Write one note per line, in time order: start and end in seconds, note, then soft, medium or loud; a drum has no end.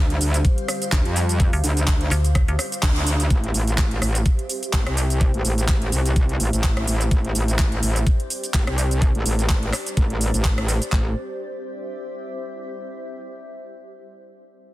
0.00 0.19 D2 loud
0.00 3.26 D3 medium
0.00 3.27 G3 medium
0.00 3.26 F4 medium
0.00 3.29 G4 medium
0.00 10.92 C5 medium
0.00 3.30 F5 medium
0.10 closed hi-hat soft
0.21 0.43 D2 loud
0.21 open hi-hat loud
0.21 shaker medium
0.34 closed hi-hat medium
0.34 shaker soft
0.45 kick loud
0.45 closed hi-hat medium
0.45 shaker soft
0.58 closed hi-hat soft
0.68 cross-stick medium
0.68 open hi-hat loud
0.68 shaker medium
0.82 closed hi-hat medium
0.82 shaker soft
0.92 1.03 D2 loud
0.92 kick loud
0.92 clap loud
0.92 closed hi-hat medium
0.92 shaker soft
1.05 1.51 F2 medium
1.05 closed hi-hat soft
1.16 open hi-hat loud
1.16 shaker medium
1.29 closed hi-hat medium
1.29 shaker soft
1.40 kick loud
1.40 closed hi-hat medium
1.40 shaker soft
1.53 1.62 D2 loud
1.53 open hi-hat medium
1.64 2.10 D2 loud
1.64 open hi-hat loud
1.64 shaker medium
1.77 closed hi-hat medium
1.77 shaker soft
1.88 kick loud
1.88 clap loud
1.88 closed hi-hat medium
1.88 shaker soft
2.01 closed hi-hat soft
2.11 2.46 D2 loud
2.11 clap soft
2.11 open hi-hat loud
2.11 shaker medium
2.25 closed hi-hat medium
2.25 shaker soft
2.35 kick loud
2.35 cross-stick medium
2.35 closed hi-hat medium
2.35 shaker soft
2.48 2.57 D2 loud
2.48 closed hi-hat soft
2.59 cross-stick medium
2.59 open hi-hat loud
2.59 shaker medium
2.72 closed hi-hat medium
2.72 shaker soft
2.83 3.29 D2 medium
2.83 kick loud
2.83 clap loud
2.83 closed hi-hat medium
2.83 shaker soft
2.96 closed hi-hat soft
3.07 open hi-hat loud
3.07 shaker medium
3.20 closed hi-hat medium
3.20 shaker soft
3.30 3.53 A1 loud
3.30 10.91 G4 medium
3.30 kick loud
3.30 closed hi-hat medium
3.30 shaker soft
3.44 closed hi-hat soft
3.54 4.00 A1 medium
3.54 open hi-hat loud
3.54 shaker medium
3.67 7.54 E5 medium
3.67 closed hi-hat medium
3.67 shaker soft
3.78 kick loud
3.78 clap loud
3.78 closed hi-hat medium
3.78 shaker soft
3.91 closed hi-hat soft
4.02 4.24 A1 loud
4.02 cross-stick medium
4.02 open hi-hat loud
4.02 shaker medium
4.15 closed hi-hat medium
4.15 shaker soft
4.26 kick loud
4.26 closed hi-hat medium
4.26 shaker soft
4.39 closed hi-hat soft
4.49 open hi-hat loud
4.49 shaker medium
4.63 closed hi-hat medium
4.63 shaker soft
4.73 4.84 A1 loud
4.73 kick loud
4.73 clap loud
4.73 closed hi-hat medium
4.73 shaker soft
4.86 5.32 C2 medium
4.86 cross-stick medium
4.86 closed hi-hat soft
4.97 open hi-hat loud
4.97 shaker medium
5.10 closed hi-hat medium
5.10 shaker soft
5.21 kick loud
5.21 closed hi-hat medium
5.21 shaker soft
5.34 5.43 A1 medium
5.34 closed hi-hat soft
5.45 5.91 A1 loud
5.45 open hi-hat loud
5.45 shaker medium
5.58 closed hi-hat medium
5.58 shaker soft
5.68 kick loud
5.68 clap loud
5.68 closed hi-hat medium
5.68 shaker soft
5.82 closed hi-hat soft
5.92 6.38 C2 loud
5.92 open hi-hat loud
5.92 shaker medium
6.05 closed hi-hat medium
6.05 shaker soft
6.16 kick loud
6.16 closed hi-hat medium
6.16 shaker soft
6.29 closed hi-hat soft
6.40 6.51 A1 loud
6.40 open hi-hat loud
6.40 shaker medium
6.53 6.86 A1 loud
6.53 closed hi-hat medium
6.53 shaker soft
6.64 kick loud
6.64 clap loud
6.64 closed hi-hat medium
6.64 shaker soft
6.77 cross-stick medium
6.77 closed hi-hat soft
6.87 7.10 A1 loud
6.87 open hi-hat loud
6.87 shaker medium
7.01 closed hi-hat medium
7.01 shaker soft
7.11 7.33 A1 loud
7.11 kick loud
7.11 closed hi-hat medium
7.11 shaker soft
7.25 closed hi-hat soft
7.35 7.81 A1 loud
7.35 open hi-hat loud
7.35 shaker medium
7.39 10.92 D5 medium
7.48 closed hi-hat soft
7.48 shaker soft
7.59 kick loud
7.59 clap loud
7.59 closed hi-hat medium
7.59 shaker soft
7.72 closed hi-hat soft
7.83 8.05 A1 loud
7.83 open hi-hat loud
7.83 shaker medium
7.96 closed hi-hat soft
7.96 shaker soft
8.07 kick loud
8.07 closed hi-hat medium
8.07 shaker soft
8.20 closed hi-hat soft
8.30 open hi-hat loud
8.30 shaker medium
8.44 closed hi-hat medium
8.44 shaker soft
8.54 8.65 A1 loud
8.54 kick loud
8.54 clap loud
8.54 closed hi-hat medium
8.54 shaker soft
8.67 9.13 C2 medium
8.67 cross-stick medium
8.67 closed hi-hat soft
8.78 open hi-hat loud
8.78 shaker medium
8.91 closed hi-hat soft
8.91 shaker soft
9.02 kick loud
9.02 closed hi-hat medium
9.02 shaker soft
9.15 9.24 A1 medium
9.15 closed hi-hat soft
9.26 9.72 A1 loud
9.26 open hi-hat loud
9.26 shaker medium
9.39 closed hi-hat medium
9.39 shaker soft
9.49 kick loud
9.49 clap loud
9.49 closed hi-hat medium
9.49 shaker soft
9.63 closed hi-hat soft
9.73 cross-stick medium
9.73 clap soft
9.73 open hi-hat loud
9.73 shaker medium
9.87 closed hi-hat soft
9.87 shaker soft
9.97 10.32 A1 loud
9.97 kick loud
9.97 closed hi-hat medium
9.97 shaker soft
10.10 closed hi-hat soft
10.21 open hi-hat loud
10.21 shaker medium
10.34 10.80 A1 loud
10.34 closed hi-hat soft
10.34 shaker soft
10.45 kick loud
10.45 clap loud
10.45 closed hi-hat medium
10.45 shaker soft
10.58 cross-stick medium
10.58 closed hi-hat soft
10.68 open hi-hat loud
10.68 shaker medium
10.82 closed hi-hat soft
10.82 shaker soft
10.92 11.14 A1 loud
10.92 12.79 G4 medium
10.92 kick loud
10.92 clap medium
11.00 12.79 C5 medium
11.08 12.79 E5 medium